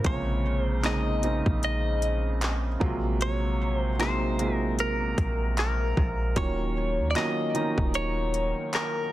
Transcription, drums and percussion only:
0.04 kick, closed hi-hat
0.84 clap, closed hi-hat
1.23 closed hi-hat
1.46 kick
1.63 closed hi-hat
2.02 closed hi-hat
2.41 clap, closed hi-hat
2.81 kick
3.21 closed hi-hat
4.00 clap, closed hi-hat
4.39 closed hi-hat
4.79 closed hi-hat
5.18 kick, closed hi-hat
5.57 clap, closed hi-hat
5.97 kick
6.36 kick, closed hi-hat
7.15 clap, closed hi-hat
7.55 closed hi-hat
7.78 kick
7.94 closed hi-hat
8.34 closed hi-hat
8.73 clap, closed hi-hat

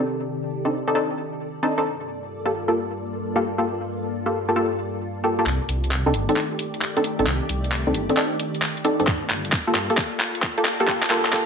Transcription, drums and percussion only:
5.46 clap
5.69 open hi-hat
5.84 closed hi-hat
5.91 clap
6.14 open hi-hat
6.29 closed hi-hat
6.36 clap
6.59 open hi-hat
6.74 closed hi-hat
6.82 clap
6.97 closed hi-hat
7.04 open hi-hat
7.19 closed hi-hat
7.27 clap
7.49 open hi-hat
7.64 closed hi-hat
7.72 clap
7.94 open hi-hat
8.09 closed hi-hat
8.17 clap
8.40 open hi-hat
8.55 closed hi-hat
8.62 clap
8.77 closed hi-hat
8.85 open hi-hat
9.00 closed hi-hat
9.07 kick, clap
9.30 clap, open hi-hat
9.45 closed hi-hat
9.52 kick, clap
9.75 clap, open hi-hat
9.90 closed hi-hat
9.97 kick, clap
10.20 clap, open hi-hat
10.35 closed hi-hat
10.43 kick, clap
10.58 closed hi-hat
10.65 clap, open hi-hat
10.80 closed hi-hat
10.88 kick, clap
11.03 clap
11.10 clap, open hi-hat
11.25 clap, closed hi-hat
11.33 kick, clap

